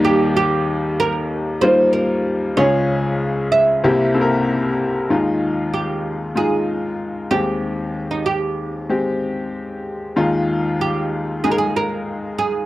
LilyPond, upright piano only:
<<
  \new Staff \with { instrumentName = "Upright piano" } { \time 4/4 \key ees \mixolydian \tempo 4 = 95 <g bes ees' g'>4 r4. <g bes ees' f'>4 r8 | <aes des' f' aes'>4. r8 <bes c' e' g'>8 <bes c' e' a' bes'>4 r8 | \key f \dorian <aes ees' f'>4. r8 <aes ees' f'>4. <aes c' g'>8~ | <aes c' g'>4 r4 <aes c' g'>4. r8 |
<aes ees' f'>4. r8 <aes ees' aes'>4. r8 | }
  \new Staff \with { instrumentName = "Upright piano" } { \clef bass \time 4/4 \key ees \mixolydian <ees, ees>2.~ <ees, ees>8 r8 | <des, des>2 <c, c>2 | \key f \dorian <ees, ees>2.~ <ees, ees>8 <ees, ees>8~ | <ees, ees>2.~ <ees, ees>8 r8 |
<ees, ees>1 | }
>>